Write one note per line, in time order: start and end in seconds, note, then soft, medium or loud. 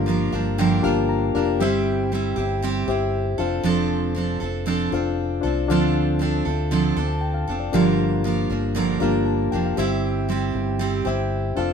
0.00 0.29 G1 loud
0.00 0.46 D4 medium
0.00 0.47 F4 medium
0.00 0.47 G4 medium
0.00 0.47 A#4 medium
0.00 0.31 F5 loud
0.06 0.32 F3 medium
0.06 0.33 A#3 medium
0.06 0.33 D4 medium
0.06 0.31 A#4 medium
0.32 0.80 G1 loud
0.32 0.58 F3 soft
0.32 0.58 A#3 soft
0.32 0.59 D4 medium
0.32 0.58 A#4 medium
0.32 0.57 F5 medium
0.58 0.84 G2 medium
0.58 0.84 D3 medium
0.58 0.84 F3 medium
0.58 0.84 A#3 medium
0.58 0.84 D4 medium
0.58 0.83 A#4 medium
0.58 0.82 G5 medium
0.82 1.31 G1 loud
0.82 1.36 A#3 medium
0.82 1.28 D4 medium
0.82 1.35 D4 medium
0.82 1.28 F4 medium
0.82 1.29 G4 medium
0.82 1.34 A#4 medium
0.82 1.29 A#4 medium
0.82 1.29 F5 loud
0.82 1.07 A5 medium
0.87 1.37 F3 medium
1.09 1.57 A#5 medium
1.35 1.61 F1 loud
1.35 1.60 F3 soft
1.35 1.61 A#3 medium
1.35 1.57 D4 medium
1.35 1.61 D4 medium
1.35 1.57 F4 medium
1.35 1.58 G4 medium
1.35 1.61 A#4 medium
1.35 1.58 A#4 medium
1.35 1.58 F5 medium
1.60 2.33 G1 loud
1.60 2.11 G3 medium
1.60 2.12 C4 medium
1.60 2.13 E4 medium
1.60 2.50 G4 medium
1.60 2.13 G4 loud
1.60 2.51 C5 medium
1.60 2.51 E5 medium
2.12 2.37 G3 medium
2.12 2.38 C4 medium
2.12 2.37 E4 medium
2.12 2.35 G4 medium
2.36 2.84 G1 loud
2.36 2.62 C4 soft
2.36 2.63 E4 soft
2.36 2.62 G4 medium
2.62 2.88 G3 medium
2.62 2.89 C4 medium
2.62 2.89 E4 medium
2.62 2.87 G4 loud
2.87 3.35 G1 medium
2.87 3.41 C4 medium
2.87 3.39 E4 medium
2.87 3.33 G4 medium
2.87 3.37 G4 medium
2.87 3.33 C5 medium
2.87 3.34 E5 medium
3.38 3.63 F1 loud
3.38 3.63 C4 soft
3.38 4.29 D4 medium
3.38 3.64 D4 medium
3.38 4.29 F4 medium
3.38 3.64 A4 medium
3.38 4.29 A4 medium
3.38 4.30 C5 medium
3.38 4.30 F5 medium
3.63 4.37 F1 loud
3.63 4.14 F3 medium
3.63 4.16 C4 medium
3.63 4.17 D4 medium
3.63 4.18 A4 medium
4.15 4.41 F3 medium
4.15 4.42 C4 medium
4.15 4.41 D4 medium
4.15 4.39 A4 medium
4.40 4.88 F1 medium
4.40 4.65 C4 soft
4.40 4.66 D4 soft
4.40 4.66 A4 soft
4.66 4.92 F3 medium
4.66 4.92 C4 medium
4.66 4.93 D4 medium
4.66 4.91 A4 medium
4.92 5.39 F1 loud
4.92 5.46 C4 soft
4.92 5.37 D4 medium
4.92 5.44 D4 medium
4.92 5.37 F4 medium
4.92 5.43 A4 medium
4.92 5.38 A4 medium
4.92 5.38 C5 medium
4.92 5.38 F5 medium
5.41 5.67 C2 medium
5.41 5.65 D4 medium
5.41 5.70 D4 soft
5.41 5.65 F4 medium
5.41 5.69 A4 medium
5.41 5.66 A4 medium
5.41 5.66 C5 medium
5.41 5.66 D5 medium
5.46 5.70 C4 soft
5.68 6.42 D2 loud
5.68 6.24 D3 medium
5.68 6.19 F3 medium
5.68 6.19 C4 loud
5.68 6.59 D4 medium
5.68 6.21 D4 loud
5.68 6.59 F4 medium
5.68 6.59 A4 medium
5.68 6.21 A4 medium
5.68 6.60 C5 medium
5.68 6.60 F5 loud
6.19 6.45 F3 medium
6.19 6.46 C4 medium
6.19 6.46 D4 medium
6.19 6.44 A4 medium
6.45 6.93 D2 loud
6.45 6.71 C4 soft
6.45 6.71 D4 soft
6.45 6.71 A4 medium
6.71 6.97 D3 medium
6.71 6.97 F3 medium
6.71 6.97 C4 medium
6.71 6.97 D4 loud
6.71 6.95 A4 medium
6.96 7.44 D2 loud
6.96 7.49 C4 soft
6.96 7.49 D4 medium
6.96 7.46 A4 medium
7.08 7.21 A5 medium
7.21 7.34 G5 medium
7.34 7.59 F5 medium
7.48 7.71 F1 loud
7.48 7.74 C4 soft
7.48 7.74 D4 medium
7.48 7.73 A4 medium
7.60 7.85 D5 medium
7.72 8.46 G1 loud
7.72 8.24 G2 medium
7.72 8.25 D3 medium
7.72 8.23 F3 loud
7.72 8.24 A#3 medium
7.72 8.63 D4 medium
7.72 8.25 D4 medium
7.72 8.64 F4 medium
7.72 8.64 G4 medium
7.72 8.64 A#4 medium
7.72 8.26 A#4 medium
7.72 8.64 F5 medium
8.24 8.50 F3 medium
8.24 8.51 A#3 medium
8.24 8.49 D4 medium
8.24 8.48 A#4 medium
8.49 8.97 G1 medium
8.49 8.75 F3 soft
8.49 8.75 A#3 soft
8.49 8.76 D4 medium
8.49 8.75 A#4 soft
8.75 9.01 G2 medium
8.75 9.01 D3 medium
8.75 9.01 F3 medium
8.75 9.01 A#3 medium
8.75 9.00 D4 loud
8.75 8.99 A#4 loud
9.00 9.49 G1 loud
9.00 9.54 F3 soft
9.00 9.53 A#3 medium
9.00 9.46 D4 medium
9.00 9.52 D4 medium
9.00 9.46 F4 medium
9.00 9.47 G4 medium
9.00 9.51 A#4 medium
9.00 9.47 A#4 medium
9.00 9.27 F5 loud
9.26 9.51 A5 medium
9.52 9.76 F1 loud
9.52 9.77 F3 medium
9.52 9.78 A#3 soft
9.52 9.78 D4 medium
9.52 9.78 A#4 medium
9.52 9.64 G5 medium
9.66 9.90 F5 medium
9.77 10.51 G1 loud
9.77 10.27 G3 medium
9.77 10.29 C4 medium
9.77 10.30 E4 medium
9.77 10.68 G4 medium
9.77 10.30 G4 medium
9.77 10.68 C5 medium
9.77 10.69 E5 loud
10.29 10.78 G3 medium
10.29 10.80 C4 medium
10.29 10.80 E4 medium
10.29 10.81 G4 medium
10.55 11.02 G1 loud
10.79 11.05 G3 medium
10.79 11.06 C4 medium
10.79 11.06 E4 loud
10.79 11.04 G4 medium
11.05 11.53 G1 loud
11.05 11.59 C4 medium
11.05 11.57 E4 medium
11.05 11.56 G4 medium
11.05 11.50 G4 medium
11.05 11.51 C5 medium
11.05 11.52 E5 loud
11.56 11.73 F1 loud
11.56 11.73 D4 medium
11.56 11.73 F4 medium
11.56 11.73 A4 medium
11.56 11.73 C5 medium
11.56 11.73 F5 loud
11.60 11.73 C4 soft